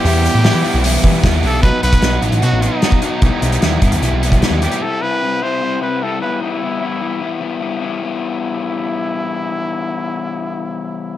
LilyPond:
<<
  \new Staff \with { instrumentName = "String machine" } { \time 4/4 \key e \minor \tempo 4 = 150 <g' fis'' b'' e'''>1 | r1 | r1 | r1 |
r1 | r1 | r1 | }
  \new Staff \with { instrumentName = "Trumpet" } { \time 4/4 \key e \minor g'2. r8 a'8 | b'8 b'4 r8 fis'8 dis'4 dis'8~ | dis'2~ dis'8 r4 g'8 | a'8 b'4 c''4 b'8 a'8 b'8 |
e'2. r4 | e'1~ | e'1 | }
  \new Staff \with { instrumentName = "Overdriven electric guitar" } { \time 4/4 \key e \minor <e g b e'>4 <e g b e'>8 <e g b e'>8 <e g b e'>4 <e g b e'>8 <e g b e'>8 | <b, fis b dis'>8 <b, fis b dis'>8 <b, fis b dis'>8 <b, fis b dis'>8 <b, fis b dis'>8 <b, fis b dis'>8 <b, fis b dis'>8 <b, fis b dis'>8 | <b, g b e'>8 <b, g b e'>8 <b, g b e'>8 <b, g b e'>8 <b, g b e'>8 <b, g b e'>8 <b, g b e'>8 <b, g b e'>8 | <c g c' e'>8 <c g c' e'>8 <c g c' e'>8 <c g c' e'>8 <c g c' e'>8 <c g c' e'>8 <c g c' e'>8 <e g b e'>8 |
<e g b e'>8 <e g b e'>8 <e g b e'>8 <e g b e'>8 <e g b e'>8 <e g b e'>8 <e g b e'>8 <e g b e'>8 | <e g b e'>1~ | <e g b e'>1 | }
  \new Staff \with { instrumentName = "Overdriven electric guitar" } { \clef bass \time 4/4 \key e \minor <e, b, e g b e'>4 <e, b, e g b e'>8 <e, b, e g b e'>8 <e, b, e g b e'>4 <e, b, e g b e'>8 <e, b, e g b e'>8 | <b, fis b dis' fis'>8 <b, fis b dis' fis'>8 <b, fis b dis' fis'>8 <b, fis b dis' fis'>8 <b, fis b dis' fis'>8 <b, fis b dis' fis'>8 <b, fis b dis' fis'>8 <b, fis b dis' fis'>8 | <b, e g e' g'>8 <b, e g e' g'>8 <b, e g e' g'>8 <b, e g e' g'>8 <b, e g e' g'>8 <b, e g e' g'>8 <b, e g e' g'>8 <b, e g e' g'>8 | r1 |
r1 | r1 | r1 | }
  \new Staff \with { instrumentName = "Picked electric bass" } { \clef bass \time 4/4 \key e \minor e,8. a,8 e16 r16 b,,8. e8 dis,8 b,,8 | b,,16 r16 b,,8 b,,8 a,,16 a,,16 b,16 a,,8 r4 r16 | b,,16 r16 b,,8 dis,8 g,16 dis,16 b,,16 b,,4 dis,8 r16 | r1 |
r1 | r1 | r1 | }
  \new DrumStaff \with { instrumentName = "Drums" } \drummode { \time 4/4 hho8 hho8 <hho sn>8 hho8 hho8 <hho bd>8 <hho bd sn>8 hho8 | <hh bd>8 hh16 <hh bd>16 <hh sn>8 hh16 hh16 hh8 hh8 <hh sn>16 bd16 hh8 | <hh bd>8 hh16 hh16 <hh sn>8 <hh bd>16 hh16 hh8 hh16 <hh bd>16 <hh sn>8 hh16 hh16 | r4 r4 r4 r4 |
r4 r4 r4 r4 | r4 r4 r4 r4 | r4 r4 r4 r4 | }
>>